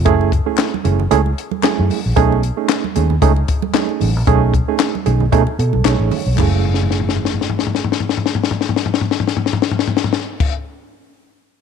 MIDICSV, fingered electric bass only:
0, 0, Header, 1, 2, 480
1, 0, Start_track
1, 0, Tempo, 528169
1, 50, Time_signature, 4, 2, 24, 8
1, 10554, End_track
2, 0, Start_track
2, 0, Title_t, "Fingered electric bass"
2, 0, Program_c, 0, 33
2, 53, Note_on_c, 0, 30, 99
2, 351, Note_off_c, 0, 30, 0
2, 771, Note_on_c, 0, 30, 82
2, 962, Note_off_c, 0, 30, 0
2, 1012, Note_on_c, 0, 37, 91
2, 1202, Note_off_c, 0, 37, 0
2, 1630, Note_on_c, 0, 42, 95
2, 1711, Note_off_c, 0, 42, 0
2, 1870, Note_on_c, 0, 34, 90
2, 1950, Note_off_c, 0, 34, 0
2, 1972, Note_on_c, 0, 35, 125
2, 2269, Note_off_c, 0, 35, 0
2, 2695, Note_on_c, 0, 39, 92
2, 2883, Note_off_c, 0, 39, 0
2, 2926, Note_on_c, 0, 37, 102
2, 3117, Note_off_c, 0, 37, 0
2, 3652, Note_on_c, 0, 33, 96
2, 3783, Note_off_c, 0, 33, 0
2, 3783, Note_on_c, 0, 34, 88
2, 3865, Note_off_c, 0, 34, 0
2, 3886, Note_on_c, 0, 35, 110
2, 4184, Note_off_c, 0, 35, 0
2, 4604, Note_on_c, 0, 35, 87
2, 4795, Note_off_c, 0, 35, 0
2, 4842, Note_on_c, 0, 47, 104
2, 4950, Note_off_c, 0, 47, 0
2, 5079, Note_on_c, 0, 47, 95
2, 5188, Note_off_c, 0, 47, 0
2, 5216, Note_on_c, 0, 35, 90
2, 5300, Note_off_c, 0, 35, 0
2, 5318, Note_on_c, 0, 35, 97
2, 5427, Note_off_c, 0, 35, 0
2, 5447, Note_on_c, 0, 33, 86
2, 5535, Note_off_c, 0, 33, 0
2, 5693, Note_on_c, 0, 35, 94
2, 5779, Note_off_c, 0, 35, 0
2, 5802, Note_on_c, 0, 30, 109
2, 9522, Note_off_c, 0, 30, 0
2, 10554, End_track
0, 0, End_of_file